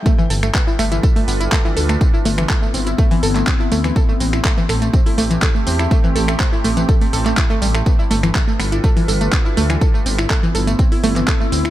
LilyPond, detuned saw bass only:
\new Staff \with { instrumentName = "Detuned saw bass" } { \clef bass \time 4/4 \key g \mixolydian \tempo 4 = 123 r8 g,,8 r8 g,,8 r8 g,,8 r8 d,8 | r8 g,,8 r8 g,,8 r8 g,,8 r8 d,8 | r8 a,,8 r8 a,,8 r8 a,,8 r8 e,8 | r8 a,,8 r8 a,,8 r8 a,,8 r8 a,,8 |
r8 g,,8 r8 g,,8 r8 g,,8 r8 d,8 | r8 g,,8 r8 g,,8 r8 g,,8 r8 d,8 | }